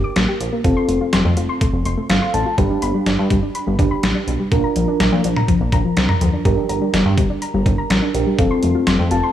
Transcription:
Already playing: D4 G4 A#4
0.04 D6
0.16 A1 A#3, snare, closed hi-hat
0.28 G4
0.40 A#1, closed hi-hat
0.52 A#3
0.64 F1 C4 F4 A4, kick, closed hi-hat
0.77 C6
0.89 F1 A3, closed hi-hat
1.01 F4
1.13 F1 C6, snare, closed hi-hat
1.25 F2 A3
1.37 F1 F4, closed hi-hat
1.49 C6
1.61 A3, kick, closed hi-hat
1.73 F1
1.85 F1 C6, closed hi-hat
1.97 A3
2.10 G1 F4 F5, snare, closed hi-hat
2.22 C6
2.34 A1 A3 A5, closed hi-hat
2.46 F4
2.58 G1 G3 D4 G4 B4, kick, closed hi-hat
2.70 D4
2.82 G1 B5, closed hi-hat
2.94 G3
3.06 G1 D4, snare, closed hi-hat
3.18 G2
3.30 G1 G3, kick, closed hi-hat
3.43 D4
3.55 B5, closed hi-hat
3.67 G1 G3
3.79 G1 D4 G4 B4, kick, closed hi-hat
3.91 B5
4.03 A1 G3, snare, closed hi-hat
4.15 D4
4.27 B1, closed hi-hat
4.40 G3
4.52 A#1 D4 F4 A#4, kick, closed hi-hat
4.64 A#5
4.76 A#1 F3, closed hi-hat
4.88 D4
5.00 A#1 A#5, snare, closed hi-hat
5.12 A#2 F3
5.24 A#1 D4, closed hi-hat
5.36 A#5, mid tom
5.48 F3, kick, closed hi-hat
5.61 A#1
5.72 A#1 A#5, kick, closed hi-hat
5.85 F3
5.97 C2 D4, snare, closed hi-hat
6.09 A#5, mid tom
6.21 D2 F3, closed hi-hat
6.33 D4
6.45 G1 G3 D4 G4 A#4, kick, closed hi-hat
6.57 D4
6.69 G1 A#5, closed hi-hat
6.81 G3
6.94 G1 D4, snare, closed hi-hat
7.06 G2
7.18 G1 G3, kick, closed hi-hat
7.30 D4
7.42 A#5, closed hi-hat
7.54 G1 G3
7.66 G1 D4, kick, closed hi-hat
7.78 A#5
7.90 A1 G3, snare, closed hi-hat
8.02 D4
8.14 A#1 D4 G4 A#4, closed hi-hat
8.27 G3
8.39 F1 C4 F4 A4, kick, closed hi-hat
8.51 C6
8.63 F1 A3, closed hi-hat
8.75 F4
8.87 F1 C6, snare, closed hi-hat
8.99 F2 A3
9.11 F1 F4 A5, closed hi-hat
9.23 C6

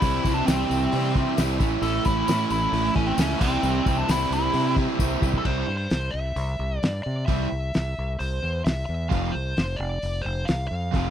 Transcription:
Already playing: E4
0.01 C2 C3 E3 G3 C4 E4 G4 E5, kick, open hi-hat, tambourine
0.25 C2 G3 C4 E4, kick, tambourine
0.34 D4
0.45 C2 C3 E3 G3 C4, snare, open hi-hat, tambourine
0.50 E4
0.70 C2, tambourine
0.92 C3 E3 G3, open hi-hat
0.96 C4 E4
1.15 G3 C4 E4, kick
1.37 C2 E3 G3 C4, snare, open hi-hat, tambourine
1.41 E4
1.59 A1 A2 E3 A3 C#4 E4 A4 E5, kick, tambourine
1.82 A1 A2 E3 A3 C#4 E4 A4, open hi-hat, tambourine
2.05 A1 A3 C#4 E4, kick, tambourine
2.27 A2 E3 A3 C#4 E4, snare, open hi-hat, tambourine
2.50 A1 E4, tambourine
2.72 A1 A2 E3 A3 C#4 E4, open hi-hat
2.95 A1 A3 C#4 E4, kick
3.07 C4
3.17 C#2 E3 A3 C#4 E4, snare, open hi-hat, tambourine
3.39 C2 G3 C4 E4 G4 E5, kick, tambourine, crash
3.43 C3 E3
3.63 C2 C3 E3 G3 C4 E4, tambourine
3.86 C2 G3 C4 E4, kick, tambourine
3.99 D4
4.08 C2 C3 E3 G3 C4 E4, snare, open hi-hat, tambourine
4.30 C2 E4, tambourine
4.53 C3 E3 G3 C4 E4, open hi-hat
4.76 G3 C4 E4, kick
4.99 C2 E3 G3 C4 E4, kick, tambourine
5.21 C2 G3 C4 E4, kick, tambourine
5.34 kick
5.38 A4
5.45 C2 C3 E3 G3 C4 E4 C5, kick, crash
5.67 G2
5.77 C5
5.90 C2, snare, open hi-hat
6.11 C2 E5
6.36 C2, open hi-hat
6.59 C2
6.79 G2 D5
6.83 snare, open hi-hat
7.03 C3 D5
7.26 C2 C3 E3 G3 E4 E5, kick, open hi-hat
7.30 C4
7.52 C2
7.74 C2, snare, open hi-hat
7.98 C2
8.19 C2 C5, open hi-hat
8.43 E2
8.64 C2 E5, snare, open hi-hat
8.85 E2 E5
9.09 F1 F2 C3 A3 C4 F4 F5, kick, open hi-hat
9.14 C3 F3
9.32 C2 C5
9.57 F1, snare, open hi-hat
9.76 F1 D5
10.02 F1, open hi-hat
10.22 F1 C5
10.45 C2 F5, snare, open hi-hat
10.67 F2 F5
10.93 F1 F2 C3 F3 A3 C4 F4, kick, open hi-hat

